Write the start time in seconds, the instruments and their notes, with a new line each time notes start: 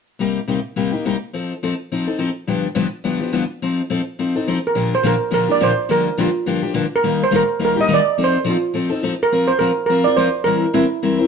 0.19 steel-string acoustic guitar C3 G3 A#3 D#4 G4
0.48 steel-string acoustic guitar C3 G3 A#3 D#4 G4
0.76 steel-string acoustic guitar C3 G3 A#3 D#4 G4
0.92 steel-string acoustic guitar A#3 D#4 G4
1.05 steel-string acoustic guitar C3 G3 A#3 D#4 G4
1.33 steel-string acoustic guitar F3 C4 D#4 A4
1.63 steel-string acoustic guitar F3 C4 D#4 A4
1.92 steel-string acoustic guitar F3 C4 D#4 A4
2.07 steel-string acoustic guitar C4 D#4 A4
2.19 steel-string acoustic guitar F3 C4 D#4 A4
2.47 steel-string acoustic guitar G2 D3 F3 B3 D4 G4
2.75 steel-string acoustic guitar G2 D3 F3 B3 D4 G4
3.04 steel-string acoustic guitar G2 D3 F3 B3 D4 G4
3.20 steel-string acoustic guitar F3 B3 D4 G4
3.33 steel-string acoustic guitar G2 D3 F3 B3 D4 G4
3.62 steel-string acoustic guitar F3 C4 D#4 A4
3.90 steel-string acoustic guitar F3 C4 D#4 A4
4.19 steel-string acoustic guitar F3 C4 D#4 A4
4.36 steel-string acoustic guitar C4 D#4 A4
4.47 steel-string acoustic guitar F3 C4 D#4 A4
4.67 steel pan A#4
4.75 steel-string acoustic guitar A#2 D3 F3 A#3 D4 G4
4.95 steel pan C5
5.03 steel-string acoustic guitar A#2 D3 F3 A#3 D4 G4, steel pan A#4
5.31 steel-string acoustic guitar A#2 D3 F3 A#3 D4 G4, steel pan A#4
5.48 steel-string acoustic guitar F3 A#3 D4 G4, steel pan D5
5.60 steel-string acoustic guitar A#2 D3 F3 A#3 D4 G4, steel pan C5
5.89 steel-string acoustic guitar G2 D3 F3 A#3 D4 G4, steel pan A#4
6.18 steel-string acoustic guitar G2 D3 F3 A#3 D4 G4, steel pan F4
6.46 steel-string acoustic guitar G2 D3 F3 A#3 D4 G4
6.62 steel-string acoustic guitar F3 A#3 D4 G4
6.74 steel-string acoustic guitar G2 D3 F3 A#3 D4 G4
6.96 steel pan A#4
7.03 steel-string acoustic guitar G2 D#3 G3 A#3 D#4 G4
7.24 steel pan C5
7.31 steel-string acoustic guitar G2 D#3 G3 A#3 D#4 G4
7.36 steel pan A#4
7.59 steel-string acoustic guitar G2 D#3 G3 A#3 D#4 G4
7.65 steel pan A#4
7.76 steel-string acoustic guitar G3 A#3 D#4 G4
7.81 steel pan D#5
7.88 steel-string acoustic guitar G2 D#3 G3 A#3 D#4 G4
7.94 steel pan D5
8.18 steel-string acoustic guitar F3 C4 D#4 A4
8.24 steel pan C5
8.45 steel-string acoustic guitar F3 C4 D#4 A4
8.50 steel pan F4
8.74 steel-string acoustic guitar F3 C4 D#4 A4
8.90 steel-string acoustic guitar C4 D#4 A4
9.03 steel-string acoustic guitar F3 C4 D#4 A4
9.23 steel pan A#4
9.32 steel-string acoustic guitar F3 C4 F4 A#4
9.48 steel pan C5
9.59 steel-string acoustic guitar F3 C4 F4 A#4, steel pan A#4
9.86 steel-string acoustic guitar F3 C4 F4, steel pan A#4
9.91 steel-string acoustic guitar A#4
10.04 steel-string acoustic guitar C4 F4 A#4, steel pan D5
10.17 steel-string acoustic guitar F3 C4 F4 A#4, steel pan C5
10.44 steel-string acoustic guitar E3 G3 C4 E4 A#4, steel pan A#4
10.73 steel-string acoustic guitar E3 G3 C4 E4 A#4, steel pan E4
11.02 steel-string acoustic guitar E3 G3 C4 E4 A#4
11.18 steel-string acoustic guitar C4 E4 A#4